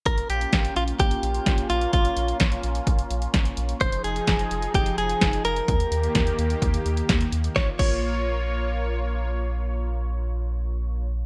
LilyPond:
<<
  \new Staff \with { instrumentName = "Clean electric guitar" } { \time 4/4 \key bes \dorian \tempo 4 = 128 bes'8 g'4 f'8 g'4. f'8 | f'4 r2. | c''8 aes'4. g'8 aes'4 bes'8~ | bes'2.~ bes'8 r8 |
des''8 des''2.~ des''8~ | des''1 | }
  \new Staff \with { instrumentName = "Analog synth pad" } { \time 4/4 \key bes \dorian <bes des' f'>1~ | <bes des' f'>1 | <f ees' aes'>1 | <ees bes g'>1 |
<bes f' des''>1~ | <bes f' des''>1 | }
  \new Staff \with { instrumentName = "Analog synth bass" } { \clef bass \time 4/4 \key bes \dorian bes,,8 bes,,8 bes,,8 bes,,8 bes,,8 bes,,8 bes,,8 bes,,8 | bes,,8 bes,,8 bes,,8 bes,,8 bes,,8 bes,,8 bes,,8 bes,,8 | f,,8 f,,8 f,,8 f,,8 f,,8 f,,8 f,,8 f,,8 | ees,8 ees,8 ees,8 ees,8 ees,8 ees,8 ees,8 ees,8 |
bes,,8 bes,,2.~ bes,,8~ | bes,,1 | }
  \new DrumStaff \with { instrumentName = "Drums" } \drummode { \time 4/4 <hh bd>16 hh16 hh16 hh16 <hh bd sn>16 hh16 hh16 hh16 <hh bd>16 hh16 hh16 hh16 <hh bd sn>16 hh16 hh16 hh16 | <hh bd>16 hh16 hh16 hh16 <hh bd sn>16 hh16 hh16 hh16 <hh bd>16 hh16 hh16 hh16 <hh bd sn>16 hh16 hh16 hh16 | <hh bd>16 hh16 hh16 hh16 <hh bd sn>16 hh16 hh16 hh16 <hh bd>16 hh16 hh16 hh16 <hh bd sn>16 hh16 hh16 hh16 | <hh bd>16 hh16 hh16 hh16 <hh bd sn>16 hh16 hh16 hh16 <hh bd>16 hh16 hh16 hh16 <hh bd sn>16 hh16 hh16 hh16 |
<bd sn>8 <cymc bd>8 r4 r4 r4 | r4 r4 r4 r4 | }
>>